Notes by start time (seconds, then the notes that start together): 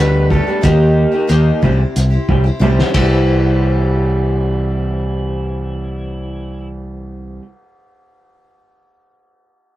Already playing: D2 B2 B4
0.00 G3 A3 D4 G4 B4
0.30 G3 A3 D4 G4 A4 B4, kick
0.47 A3 D4 G4 B4
0.62 D#2 D#3 G3 A#3 D#4 G4, kick, closed hi-hat
1.13 A#3 D#4 G4
1.27 D#2 D#3 G3 A#3 G4, closed hi-hat
1.32 D#4
1.63 C2 C3 E3 G3 C4 E4 G4, kick
1.81 muted clean electric guitar stroke
1.96 C2, closed hi-hat
2.10 C4 E4 G4
2.29 C2 E3 G3 C4 G4, kick
2.44 C4 E4 G4, muted clean electric guitar stroke
2.60 C2 C3 E3 G3 C4 E4 G4, high tom
2.79 snare
2.89 C3
2.93 C2 C3 E3 G3 C4 E4 G4, kick, ride
3.01 E4 G4